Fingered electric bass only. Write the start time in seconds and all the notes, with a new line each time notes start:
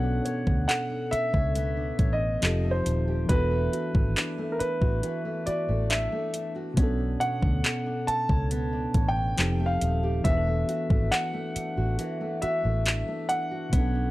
Already playing: B1
0.47 D2
1.13 muted fingered electric bass stroke
1.34 C#2
1.99 A1
2.43 F1
2.86 D#1
3.30 E1
3.95 G#1
4.61 muted fingered electric bass stroke
4.82 A1
5.48 muted fingered electric bass stroke
5.69 A1
6.78 B1
7.43 D2
8.08 muted fingered electric bass stroke
8.30 C#2
8.95 A1
9.39 F1
9.82 D#1
10.25 E1
10.91 G#1
11.56 muted fingered electric bass stroke
11.78 A1
12.43 muted fingered electric bass stroke
12.65 A1
13.73 B1